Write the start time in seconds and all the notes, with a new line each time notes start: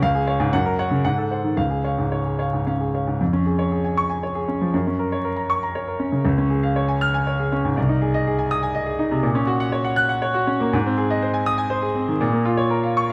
0.02 C#2 F5
0.15 G#4
0.27 C#5 F5
0.40 G#2
0.53 F#2 F#5
0.66 A#4
0.79 C#5 F#5
0.91 C#3
1.04 G#2 F#5
1.18 A4
1.31 C5 F#5
1.44 D#3
1.57 C#2 F5
1.70 G#4
1.84 C#5 F5
1.98 G#2
2.12 C#5
2.26 G#4
2.39 C#5 F5
2.53 G#2
2.67 C#4 F5
2.80 G#4
2.94 C#5 F5
3.07 G#2
3.20 F2
3.33 C#4
3.46 G#4
3.59 C#5
3.72 G#4
3.85 G#5
3.97 C#6
4.10 G#5
4.23 C#5
4.35 G#4
4.48 C#4
4.61 F3
4.74 F#2
4.87 C#4
4.99 A#4
5.12 C#5
5.25 A#4
5.36 A#5
5.50 C#6
5.63 A#5
5.75 C#5
5.88 A#4
6.00 C#4
6.12 C#3
6.25 C#2
6.38 C#4
6.50 G#4
6.63 F5
6.76 C#5
6.88 G#5
7.01 F6
7.14 G#5
7.27 C#5
7.39 G#4
7.52 C#4
7.65 G#2
7.77 C2
7.89 D#4
8.02 G#4
8.14 D#5
8.27 G#4
8.39 G#5
8.51 D#6
8.63 G#5
8.75 D#5
8.86 G#4
8.99 D#4
9.11 C3
9.23 A#2
9.35 C#4
9.47 F#4
9.60 F#5
9.72 C#5
9.85 F#5
9.96 F#6
10.09 F#5
10.22 C#5
10.34 F#4
10.47 C#4
10.60 A#3
10.73 G#2
10.86 C4
10.98 G#4
11.10 D#5
11.23 C5
11.34 G#5
11.46 D#6
11.58 G#5
11.70 C5
11.82 G#4
11.95 C4
12.08 D#3
12.21 A#2
12.32 A#3
12.45 F4
12.57 C#5
12.70 A#4
12.83 F5
12.97 C#6